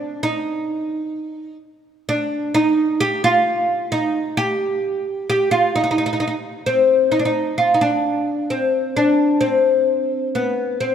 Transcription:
Already playing: D4
0.23 D#4
2.09 D4
2.54 D#4
3.00 G4
3.24 F4
3.92 D#4
4.37 G4
5.30 G4
5.51 F4
5.76 D#4
5.84 D#4
5.91 D#4
5.98 D#4
6.06 D#4
6.13 D#4
6.20 D#4
6.28 D#4
6.66 C4
7.12 D#4
7.19 D4
7.25 D#4
7.58 F4
7.74 D#4
7.81 D4
8.50 C4
8.97 D4
9.41 C4
10.35 B3
10.80 C4

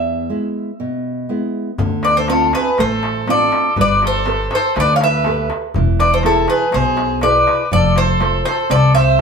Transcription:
Already playing: E2 E5
0.30 G#3 B3 E4
0.80 B2
1.29 G#3 B3 E4
1.78 D2 D3, darbuka dum
2.03 B4 D5, darbuka tek
2.15 A4 C5, darbuka tek
2.28 C4 D4 F4 A4, darbuka tek
2.41 darbuka tek
2.53 G#4 B4, darbuka tek
2.78 A1 A3 A4 C5, darbuka tek
3.03 darbuka tek
3.15 darbuka tek
3.28 C4 D4 F4 A4 D5, darbuka tek
3.40 darbuka tek
3.52 darbuka tek
3.76 G1 G3 B4, darbuka dum
3.81 D5
4.02 A4, darbuka tek
4.07 C5
4.14 darbuka tek
4.26 G4 A4 B4, darbuka tek
4.38 darbuka tek
4.51 A4, darbuka tek
4.55 C5
4.76 D2 D3 B4 D5, darbuka tek
4.94 C#5 F5
5.01 B4 E5, darbuka tek
5.13 darbuka tek
5.24 G4 A4 B4, darbuka tek
5.37 darbuka tek
5.50 darbuka tek
5.74 E1 E3, darbuka dum
6.00 B4 D5, darbuka tek
6.12 A4 C5, darbuka tek
6.23 E4 G#4 A4 B4, darbuka tek
6.36 darbuka tek
6.48 G#4 B4, darbuka tek
6.72 B1 B2 G#4 C5, darbuka tek
6.97 darbuka tek
7.09 darbuka tek
7.21 E4 G#4 B4 D5, darbuka tek
7.34 darbuka tek
7.47 darbuka tek
7.71 F1 F3 A4 D5, darbuka dum
7.84 darbuka tek
7.96 A4 C5, darbuka tek
8.20 F4 A4 C5, darbuka tek
8.33 darbuka tek
8.45 A4 C5, darbuka tek
8.58 darbuka tek
8.70 C2 C3 A4 D5, darbuka tek
8.95 C5 E5, darbuka tek

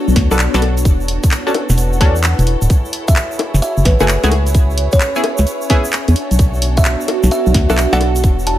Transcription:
Already playing: B3 D4 F#4 A4 C#5
0.08 B1, shaker
0.16 D2, kick, snare, open hi-hat
0.31 B1 B3 D4 F#4 A4, high bongo, shaker
0.39 clap, closed hi-hat, shaker
0.54 B1 B3 D4 F#4 A4, snare, closed hi-hat, shaker
0.62 open hi-hat, high bongo
0.77 closed hi-hat, shaker
0.85 E1 E4 F#4 A4, kick, closed hi-hat, shaker
1.00 shaker
1.06 B4 F#5, open hi-hat
1.24 kick, closed hi-hat, shaker
1.31 clap, closed hi-hat, shaker
1.47 C#4 D4 F#4 A4, shaker
1.54 open hi-hat, high bongo
1.69 E1, snare, shaker
1.78 closed hi-hat, shaker
1.93 shaker
2.01 E2 C#4 D4 F#4 A4, kick, snare, open hi-hat
2.16 shaker
2.23 clap, closed hi-hat, shaker
2.39 E1, closed hi-hat, shaker
2.47 open hi-hat
2.62 D1, closed hi-hat, shaker
2.70 E4 F#4 G#4 C#5, kick, closed hi-hat, shaker
2.85 shaker
2.93 C#5, open hi-hat
3.08 E5, kick, closed hi-hat, shaker
3.16 clap, closed hi-hat, shaker
3.31 shaker
3.39 open hi-hat, high bongo
3.54 F#1, snare, shaker
3.62 E5, closed hi-hat, shaker
3.77 F#1, shaker
3.85 A1 B4, kick, snare, open hi-hat
4.00 F#1 A3 E4 F#4 G#4 B4, high bongo, shaker
4.08 clap, closed hi-hat, shaker
4.24 C#2 A3 E4 F#4 G#4, snare, closed hi-hat, shaker
4.31 C#4 B4, open hi-hat, high bongo
4.47 closed hi-hat, shaker
4.52 G#5, kick, closed hi-hat, shaker
4.70 E5, shaker
4.78 open hi-hat
4.92 C#5, kick, closed hi-hat, shaker
5.01 clap, closed hi-hat, shaker
5.15 B3 C#4 E4 G#4, shaker
5.24 open hi-hat, high bongo
5.38 C#2, snare, shaker
5.47 closed hi-hat, shaker
5.62 shaker
5.70 B3 C#4 E4 G#4, kick, snare, open hi-hat
5.85 shaker
5.92 clap, closed hi-hat, shaker
6.08 E2, closed hi-hat, shaker
6.16 B3 D4 F#4 A4, open hi-hat
6.30 B1 F#4, closed hi-hat, shaker
6.39 kick, closed hi-hat, shaker
6.54 shaker
6.61 D4, open hi-hat
6.77 E5, kick, closed hi-hat, shaker
6.85 clap, closed hi-hat, shaker
7.01 shaker
7.08 open hi-hat, high bongo
7.23 B1, snare, shaker
7.31 E5, closed hi-hat, shaker
7.47 B1, shaker
7.54 D2, kick, snare, open hi-hat
7.70 B1 B3 D4 F#4 A4 E5, high bongo, shaker
7.78 E5, clap, closed hi-hat, shaker
7.93 B1 B3 D4 F#4 A4 F#5, snare, closed hi-hat, shaker
8.01 open hi-hat, high bongo
8.16 closed hi-hat, shaker
8.24 E1 D4 E4, kick, closed hi-hat, shaker
8.39 B4, shaker
8.47 A5, open hi-hat

